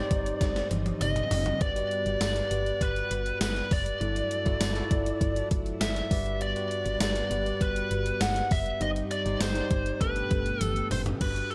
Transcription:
Already playing: tine electric piano G2 D#4 G4 C5 C#5 D5, string machine G3 C4 D#4, lead electric guitar D5
0.03 tine electric piano D5
0.11 fm bass G1, kick, closed hi-hat
0.26 closed hi-hat
0.41 fm bass G1, kick, snare, closed hi-hat
0.56 snare, closed hi-hat
0.71 fm bass G1, closed hi-hat, high tom
0.86 closed hi-hat, high tom
1.01 fm bass G1, lead electric guitar D#5, closed hi-hat, mid tom, tambourine
1.16 closed hi-hat, mid tom
1.31 fm bass F#1, floor tom, open hi-hat
1.46 closed hi-hat, floor tom
1.60 fm bass G1, tine electric piano G2 F#4 G4 B4 D5, string machine B3 F#5, lead electric guitar D5, kick, closed hi-hat
1.75 tine electric piano F#4 G4 B4 D5, closed hi-hat
1.91 closed hi-hat
2.06 fm bass G1, closed hi-hat
2.21 fm bass G1, lead electric guitar D5, snare, closed hi-hat, tambourine
2.36 closed hi-hat
2.50 fm bass G1, tine electric piano F#4 G4 B4 D5, closed hi-hat
2.66 closed hi-hat
2.81 fm bass G1, lead electric guitar B4, kick, closed hi-hat
2.96 closed hi-hat
3.11 fm bass G1, closed hi-hat
3.26 closed hi-hat
3.41 fm bass G1, lead electric guitar B4, snare, closed hi-hat, tambourine
3.56 closed hi-hat
3.71 fm bass F#1, lead electric guitar D5, kick, open hi-hat
3.86 closed hi-hat
4.00 fm bass G1, tine electric piano G2 E4 F#4 A4 D5, string machine F#3 A3 E4, closed hi-hat
4.16 closed hi-hat
4.31 closed hi-hat
4.45 fm bass G1, tine electric piano E4 F#4 A4 D5, kick, closed hi-hat
4.61 fm bass G1, snare, closed hi-hat, tambourine
4.75 tine electric piano E4 F4 A4 D5, closed hi-hat
4.82 tine electric piano F#4
4.91 fm bass G1, kick, closed hi-hat
5.06 closed hi-hat
5.21 fm bass G1, kick, closed hi-hat
5.36 closed hi-hat
5.51 fm bass G1, kick, closed hi-hat
5.66 closed hi-hat
5.81 fm bass G1, lead electric guitar E5, snare, closed hi-hat, tambourine
5.96 closed hi-hat
6.10 fm bass G1, tine electric piano G2 F#4 G4 B4 D5, string machine G3 B3 F#5, kick, open hi-hat
6.26 closed hi-hat
6.41 lead electric guitar D5, closed hi-hat
6.56 tine electric piano F#4 G4 B4 D5, closed hi-hat
6.71 closed hi-hat
6.86 fm bass G1, closed hi-hat
7.00 fm bass G1, lead electric guitar D5, snare, closed hi-hat, tambourine
7.16 closed hi-hat
7.31 fm bass G1, tine electric piano F#4 G4 B4 D5, closed hi-hat
7.46 closed hi-hat
7.61 fm bass G1, lead electric guitar B4, kick, closed hi-hat
7.76 closed hi-hat
7.91 fm bass G1, closed hi-hat
8.06 closed hi-hat
8.21 fm bass G1, lead electric guitar F#5, snare, closed hi-hat, tambourine
8.36 closed hi-hat
8.51 fm bass F#1, lead electric guitar E5, kick, open hi-hat
8.66 closed hi-hat
8.80 fm bass G1, tine electric piano G2 D#4 G4 C5 D#5, string machine G3 C4 D#4, lead electric guitar D#5, closed hi-hat
8.96 closed hi-hat
9.11 lead electric guitar D5, closed hi-hat
9.25 fm bass G1, tine electric piano D#4 G4 C5 D5, closed hi-hat
9.41 fm bass G1, lead electric guitar C5, snare, closed hi-hat, tambourine
9.55 tine electric piano D#4 G4 C5 D5, closed hi-hat
9.71 fm bass G1, kick, closed hi-hat
9.86 closed hi-hat
10.00 fm bass G1, tine electric piano G2 D4 G4 A4 B4, string machine B2 A3 G4, lead electric guitar B4, kick, closed hi-hat
10.16 closed hi-hat
10.31 fm bass G1, kick, closed hi-hat
10.46 closed hi-hat
10.61 fm bass G1, lead electric guitar A4, closed hi-hat, high tom, tambourine
10.76 closed hi-hat
10.91 fm bass F#1, lead electric guitar C5, mid tom, open hi-hat
11.06 closed hi-hat, floor tom
11.20 fm bass G1, tine electric piano G2 D4 F#4 G4 B4, lead electric guitar B4, kick, closed hi-hat, crash
11.36 closed hi-hat
11.51 lead electric guitar B4, closed hi-hat

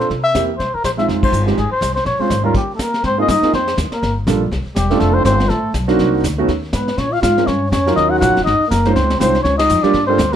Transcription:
Already playing: grand piano C4 D4 F4 A4
0.01 snare
0.10 upright bass C3, brush sweep, kick, snare
0.24 muted trumpet E5
0.34 upright bass E2, grand piano A#3 C4 E4 G4, kick, snare, hi-hat pedal
0.58 upright bass C2, muted trumpet C5, brush sweep, kick, snare
0.74 muted trumpet A#4, muted upright bass stroke
0.84 upright bass A#1, muted trumpet C5, kick, snare, hi-hat pedal
0.97 grand piano G#3 C4 D#4 F4, muted trumpet E5, snare
1.08 upright bass F1, brush sweep, kick, snare
1.23 muted trumpet C5, kick, ride
1.32 upright bass G1, hi-hat pedal
1.47 grand piano G#3 C4 D#4 G4, snare
1.57 upright bass G#1, muted trumpet G#4, brush sweep, kick, snare
1.72 muted trumpet C5, muted upright bass stroke
1.81 upright bass C2, kick, snare, hi-hat pedal
1.95 muted trumpet C5, snare
2.05 upright bass A#1, muted trumpet C#5, brush sweep, kick, snare
2.19 grand piano G#3 C4 C#4 F4, muted trumpet C5, muted upright bass stroke
2.30 upright bass G#1, kick, snare, hi-hat pedal
2.43 grand piano D#2 G3 A#3 C#4 F4, muted trumpet A#4
2.55 muted trumpet G4, brush sweep, kick, snare, crash
2.75 trombone A3, muted trumpet A4
2.79 trombone A#3, muted trumpet A#4, kick, snare, hi-hat pedal
2.94 snare
3.03 upright bass G#2, trombone C4, muted trumpet C5, brush sweep, kick, snare
3.18 grand piano A#3 C4 D#4 F4 G#4, trombone D#4, muted trumpet D#5
3.28 upright bass G2, trombone D#4, muted trumpet D#5, kick, snare, hi-hat pedal
3.43 grand piano A#3 C4 D#4 F4 G#4, muted upright bass stroke, snare
3.53 upright bass F2, trombone C4, muted trumpet C5, brush sweep, kick, snare
3.68 snare
3.77 upright bass D#2, kick, snare, hi-hat pedal
3.91 trombone A#3, muted trumpet A#4, muted upright bass stroke, snare
4.02 upright bass G1, brush sweep, kick, snare
4.27 upright bass A#1, grand piano G3 A#3 D4 F4 A4, kick, snare, hi-hat pedal
4.51 upright bass C2, brush sweep, kick, snare
4.64 muted upright bass stroke
4.74 upright bass E1, trombone G3, muted trumpet G4, kick, snare, hi-hat pedal
4.90 grand piano A3 C4 D4 F4 A4, snare
5.00 upright bass F1, trombone A3, muted trumpet A4, brush sweep, kick, snare
5.14 trombone C4, muted trumpet C5
5.25 upright bass G1, trombone C4, muted trumpet C5, kick, snare, hi-hat pedal
5.40 snare
5.49 upright bass A1, trombone A3, muted trumpet A4, brush sweep, kick, snare
5.74 upright bass B1, kick, snare, hi-hat pedal
5.88 trombone F#3, grand piano A#3 C4 D4 D#4 F#4, muted trumpet F#4, snare
5.99 upright bass C2, brush sweep, kick, snare
6.24 upright bass D2, kick, snare, hi-hat pedal
6.38 grand piano A3 B3 C#4 D#4 F#4
6.48 upright bass D#2, brush sweep, kick, snare
6.73 upright bass G#2, trombone B3, muted trumpet B4, kick, snare, hi-hat pedal
6.88 snare
6.97 upright bass A#2, trombone C#4, muted trumpet C#5, brush sweep, kick, snare
7.11 trombone F4, muted trumpet F5
7.21 upright bass G#2, trombone F4, muted trumpet F5, kick, snare, hi-hat pedal
7.37 grand piano G#3 C4 C#4 F4 A#4, snare
7.45 upright bass G2, trombone C#4, muted trumpet C#5, brush sweep, kick, snare
7.70 upright bass F2, trombone C#4, muted trumpet C#5, kick, snare, hi-hat pedal
7.86 grand piano F#3 C#4 D#4 F4 A#4, snare
7.95 upright bass D#2, trombone D#4, muted trumpet D#5, brush sweep, kick, snare
8.10 trombone F#4, muted trumpet F#5
8.18 upright bass A#1, grand piano F#3 C#4 D#4 F4 A#4, trombone F#4, muted trumpet F#5, kick, snare, hi-hat pedal
8.29 upright bass F#1
8.37 upright bass D#1, snare
8.44 upright bass G#1, trombone D#4, muted trumpet D#5, brush sweep, kick, snare
8.60 muted upright bass stroke
8.68 upright bass F#1, trombone A#3, muted trumpet A#4, kick, snare, hi-hat pedal
8.85 grand piano G#3 C#4 D#4 F4 C5, snare
8.94 upright bass C#2, trombone C4, muted trumpet C5, brush sweep, kick, snare
9.10 snare
9.17 upright bass C2, grand piano G#3 C#4 D#4 F4 C5, trombone C4, muted trumpet C5, kick, snare, hi-hat pedal
9.35 snare
9.42 upright bass C#2, trombone C#4, muted trumpet C#5, brush sweep, kick, snare
9.57 trombone D#4, muted trumpet D#5, snare, ride
9.69 upright bass F2, hi-hat pedal
9.83 grand piano G3 A#3 D4 F4 G4, trombone D4, muted trumpet D5, muted upright bass stroke, snare
9.94 upright bass G2, brush sweep, kick, snare
10.07 grand piano G3 A#3 D4 F4 A4, trombone C4, muted trumpet C5
10.18 upright bass D2, kick, snare, hi-hat pedal
10.33 trombone A#3, muted trumpet A#4

